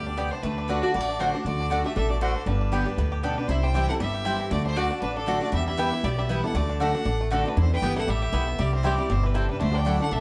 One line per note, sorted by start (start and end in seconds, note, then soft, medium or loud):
0.00 0.29 D2 medium
0.00 0.16 B2 medium
0.00 0.15 G3 medium
0.00 0.29 G4 medium
0.00 0.32 G4 medium
0.00 0.33 D5 medium
0.07 0.32 D4 medium
0.17 0.42 C3 medium
0.17 0.27 B3 medium
0.17 0.43 B3 medium
0.17 0.28 G4 medium
0.17 0.28 D5 loud
0.17 0.28 G5 loud
0.31 0.58 D4 medium
0.31 0.45 E4 medium
0.31 0.44 C5 medium
0.43 0.80 D2 medium
0.43 0.67 D3 medium
0.43 0.68 A3 medium
0.43 0.83 D4 medium
0.43 0.84 B4 medium
0.58 0.83 D4 medium
0.68 0.93 D3 medium
0.68 0.79 A3 medium
0.68 0.93 A3 medium
0.68 0.95 A3 medium
0.68 0.94 D4 loud
0.68 0.79 F#4 loud
0.68 0.94 F#4 medium
0.68 0.79 D5 medium
0.68 0.79 F#5 medium
0.83 1.08 D4 medium
0.83 0.93 F#4 medium
0.83 0.93 D5 medium
0.94 1.31 A1 medium
0.94 1.43 A2 medium
0.94 1.00 G3 medium
0.94 1.18 F#4 medium
0.94 1.22 D5 loud
1.00 1.20 A3 medium
1.09 1.21 D4 medium
1.19 1.33 D3 medium
1.19 1.30 A3 medium
1.19 1.34 A3 medium
1.19 1.33 D4 medium
1.19 1.34 D4 medium
1.19 1.44 F#4 medium
1.19 1.30 F#4 medium
1.19 1.33 F#4 medium
1.19 1.44 C5 medium
1.19 1.30 D5 medium
1.19 1.30 F#5 loud
1.34 1.45 D4 medium
1.34 1.46 D4 soft
1.34 1.45 F#4 medium
1.44 1.82 D2 medium
1.44 1.69 D3 loud
1.44 1.59 D4 medium
1.44 1.82 F#4 medium
1.44 1.82 D5 medium
1.60 1.70 D4 medium
1.70 1.84 D3 medium
1.70 1.80 A3 medium
1.70 1.85 A3 loud
1.70 1.95 D4 medium
1.70 1.85 D4 medium
1.70 1.81 F#4 medium
1.70 1.83 F#4 loud
1.70 1.81 D5 loud
1.70 1.81 F#5 loud
1.84 2.20 A3 medium
1.84 1.96 D4 soft
1.84 1.95 F#4 medium
1.84 1.95 G4 medium
1.84 1.96 E5 medium
1.96 2.33 A1 medium
1.96 2.20 B2 medium
1.96 2.09 D4 medium
1.96 2.09 A4 medium
1.96 2.10 E5 loud
2.10 2.21 D4 medium
2.10 2.20 F#4 medium
2.10 2.21 D5 medium
2.21 2.46 A2 medium
2.21 2.32 A3 loud
2.21 2.35 D4 medium
2.21 2.45 F#4 medium
2.21 2.32 F#4 loud
2.21 2.45 C5 medium
2.21 2.32 D5 medium
2.21 2.32 F#5 loud
2.36 2.47 D4 medium
2.46 2.83 G1 medium
2.46 2.96 G2 medium
2.46 2.84 G3 medium
2.46 3.20 D4 medium
2.46 3.20 B4 medium
2.61 2.85 D4 medium
2.72 2.86 D3 medium
2.72 2.86 G3 medium
2.72 2.82 B3 loud
2.72 2.87 B3 medium
2.72 3.09 G4 medium
2.72 2.83 G4 medium
2.72 2.84 G4 medium
2.72 2.83 D5 medium
2.72 2.83 G5 loud
2.86 2.98 B3 medium
2.86 3.21 D4 medium
2.86 2.97 G4 medium
2.97 3.35 D2 medium
2.97 3.23 A2 medium
2.97 3.35 B3 medium
3.12 3.36 G4 medium
3.23 3.48 B2 medium
3.23 3.33 B3 medium
3.23 3.37 D4 medium
3.23 3.49 D4 medium
3.23 3.34 G4 loud
3.23 3.40 A4 medium
3.23 3.34 D5 loud
3.23 3.34 G5 loud
3.38 3.51 D4 medium
3.38 3.49 G4 medium
3.38 3.50 B4 medium
3.48 3.85 C2 medium
3.48 3.98 C3 medium
3.48 3.86 E4 medium
3.48 3.64 E4 medium
3.48 3.65 C5 loud
3.63 3.98 G3 medium
3.63 3.89 C5 medium
3.63 3.89 G5 loud
3.74 3.88 E3 medium
3.74 3.89 G3 medium
3.74 3.84 C4 medium
3.74 3.89 C4 medium
3.74 3.85 E4 medium
3.74 3.87 E4 loud
3.74 4.12 G4 medium
3.74 3.85 C5 medium
3.74 3.85 G5 loud
3.88 4.00 C4 soft
3.88 3.99 E4 medium
3.88 4.23 E4 medium
3.88 3.95 A4 medium
3.88 3.94 F#5 loud
4.00 4.37 G1 medium
4.00 4.49 G2 medium
4.00 4.37 G3 medium
4.00 4.48 G4 medium
4.00 4.48 E5 loud
4.14 4.49 G4 medium
4.25 4.50 E3 medium
4.25 4.50 G3 medium
4.25 4.35 C4 medium
4.25 4.50 C4 loud
4.25 4.35 E4 medium
4.25 4.51 E4 medium
4.25 4.36 C5 medium
4.25 4.36 G5 loud
4.40 4.51 C4 medium
4.51 4.88 D2 loud
4.51 4.75 D3 loud
4.51 4.88 A3 medium
4.51 4.64 F#4 medium
4.51 4.65 D5 medium
4.66 4.76 D4 medium
4.66 4.77 E4 medium
4.66 4.79 C5 loud
4.76 4.90 D3 medium
4.76 4.86 A3 loud
4.76 4.90 A3 medium
4.76 4.90 D4 medium
4.76 4.91 D4 medium
4.76 4.86 F#4 medium
4.76 5.02 F#4 medium
4.76 4.89 F#4 medium
4.76 4.87 D5 loud
4.76 5.02 D5 loud
4.76 4.87 F#5 loud
4.91 5.01 D4 medium
4.91 5.02 D4 soft
4.91 5.01 F#4 medium
5.02 5.39 A1 medium
5.02 5.51 A2 medium
5.02 5.16 D4 medium
5.02 5.15 B4 loud
5.17 5.40 D4 medium
5.17 5.26 D4 medium
5.17 5.41 A4 loud
5.26 5.40 D3 medium
5.26 5.37 A3 medium
5.26 5.41 A3 medium
5.26 5.53 D4 medium
5.26 5.41 D4 medium
5.26 5.37 F#4 medium
5.26 5.40 F#4 loud
5.26 5.38 D5 medium
5.26 5.38 F#5 loud
5.41 5.53 A3 medium
5.41 5.53 D4 medium
5.41 5.52 F#4 medium
5.41 5.53 D5 medium
5.52 6.01 E2 medium
5.52 5.90 E2 loud
5.52 5.90 G3 medium
5.52 5.66 G4 medium
5.52 5.67 E5 loud
5.67 5.92 E4 medium
5.67 6.01 G4 medium
5.67 6.06 E5 loud
5.77 5.92 E3 medium
5.77 5.92 G3 medium
5.77 5.88 B3 medium
5.77 5.92 B3 loud
5.77 5.88 E4 medium
5.77 5.91 E4 medium
5.77 6.15 G4 medium
5.77 5.89 B4 loud
5.77 5.89 G5 loud
5.92 6.04 B3 soft
5.92 6.03 E4 medium
5.92 6.27 E4 medium
6.04 6.41 B1 medium
6.04 6.53 B2 medium
6.04 6.41 B3 medium
6.04 6.17 G4 medium
6.04 6.21 D5 loud
6.18 6.42 G3 medium
6.18 6.44 G4 medium
6.18 6.44 E5 medium
6.29 6.43 E3 medium
6.29 6.43 G3 medium
6.29 6.39 B3 medium
6.29 6.44 B3 loud
6.29 6.39 E4 medium
6.29 6.55 E4 medium
6.29 6.43 E4 medium
6.29 6.40 B4 loud
6.29 6.40 G5 medium
6.44 6.54 G3 medium
6.44 6.55 B3 medium
6.44 6.54 E4 medium
6.44 6.55 A4 medium
6.44 6.58 F#5 loud
6.54 6.91 D2 medium
6.54 6.79 D3 loud
6.54 6.92 A3 medium
6.54 6.81 F#4 medium
6.54 6.81 D5 loud
6.69 6.79 D4 medium
6.80 6.94 D3 medium
6.80 6.90 A3 medium
6.80 6.94 A3 medium
6.80 6.93 D4 medium
6.80 6.95 D4 loud
6.80 6.90 F#4 medium
6.80 6.93 F#4 loud
6.80 7.29 A4 medium
6.80 6.90 D5 medium
6.80 6.91 F#5 loud
6.80 7.29 F#5 loud
6.95 7.04 D4 medium
6.95 7.06 D4 soft
6.95 7.05 F#4 medium
7.05 7.42 A1 loud
7.05 7.54 A2 medium
7.05 7.30 D4 medium
7.21 7.45 A3 medium
7.31 7.45 D3 medium
7.31 7.41 A3 medium
7.31 7.45 A3 medium
7.31 7.57 D4 medium
7.31 7.45 D4 medium
7.31 7.41 F#4 loud
7.31 7.44 F#4 medium
7.31 7.50 A4 medium
7.31 7.41 D5 loud
7.31 7.42 F#5 medium
7.45 7.57 A3 medium
7.45 7.57 D4 soft
7.45 7.58 D4 medium
7.45 7.56 F#4 medium
7.45 7.58 B4 medium
7.56 7.75 E2 loud
7.56 8.06 E2 medium
7.56 7.96 E4 medium
7.56 7.71 E4 medium
7.61 7.72 C5 medium
7.74 7.96 B4 medium
7.74 7.96 G5 loud
7.82 8.04 G1 medium
7.82 7.96 E3 medium
7.82 7.96 G3 loud
7.82 7.92 B3 loud
7.82 7.96 B3 medium
7.82 7.92 E4 medium
7.82 7.95 E4 loud
7.82 8.19 G4 medium
7.82 7.93 B4 loud
7.82 7.93 G5 medium
7.96 8.08 B3 soft
7.96 8.07 E4 medium
7.96 8.33 E4 medium
7.96 8.09 A4 medium
7.96 8.12 F#5 medium
8.08 8.29 A1 medium
8.08 8.32 A2 medium
8.08 8.45 G3 medium
8.08 8.59 G4 medium
8.08 8.62 E5 loud
8.22 8.56 G4 medium
8.32 8.54 B1 medium
8.32 8.57 B2 medium
8.32 8.43 B3 medium
8.32 8.84 E4 medium
8.32 8.43 E4 medium
8.32 8.43 B4 medium
8.32 8.44 G5 loud
8.48 8.59 B3 medium
8.59 8.96 C2 medium
8.59 9.07 C3 medium
8.59 8.96 G3 medium
8.59 8.73 G4 medium
8.59 8.74 D5 loud
8.73 9.07 C4 medium
8.73 8.86 E4 medium
8.73 8.88 C5 medium
8.83 8.97 E3 medium
8.83 8.98 G3 medium
8.83 8.94 C4 medium
8.83 8.98 C4 medium
8.83 8.94 E4 medium
8.83 9.21 E4 medium
8.83 8.97 E4 loud
8.83 9.12 G4 medium
8.83 8.94 C5 loud
8.83 9.14 D5 medium
8.83 8.94 G5 medium
8.98 9.33 G3 medium
8.98 9.10 C4 soft
8.98 9.09 E4 medium
9.10 9.47 G1 medium
9.10 9.34 B2 medium
9.10 9.46 C4 medium
9.10 9.26 E4 medium
9.10 9.28 C5 medium
9.23 9.58 E3 medium
9.23 9.36 D4 medium
9.23 9.38 B4 medium
9.34 9.59 C3 medium
9.34 9.45 C4 medium
9.34 9.50 C4 medium
9.34 9.60 E4 medium
9.34 9.45 E4 loud
9.34 9.50 A4 medium
9.34 9.45 C5 medium
9.34 9.45 G5 medium
9.49 9.59 G3 medium
9.49 9.61 D4 medium
9.49 9.60 B4 medium
9.60 9.98 D2 loud
9.60 10.09 D3 loud
9.60 9.97 A3 medium
9.60 9.77 E4 medium
9.60 9.77 C5 medium
9.74 9.86 D4 medium
9.74 10.01 D5 medium
9.74 10.01 G5 loud
9.85 9.99 F#3 medium
9.85 9.96 A3 medium
9.85 10.00 A3 medium
9.85 10.11 D4 medium
9.85 10.00 D4 loud
9.85 9.96 E4 medium
9.85 9.98 E4 loud
9.85 9.96 D5 medium
9.85 9.96 F#5 medium
9.99 10.20 A3 medium
9.99 10.12 D4 medium
9.99 10.11 E4 medium
9.99 10.11 A4 medium
9.99 10.14 F#5 medium
10.11 10.20 B1 medium
10.11 10.20 A2 medium
10.11 10.20 D4 medium
10.11 10.20 A4 medium
10.11 10.20 E5 loud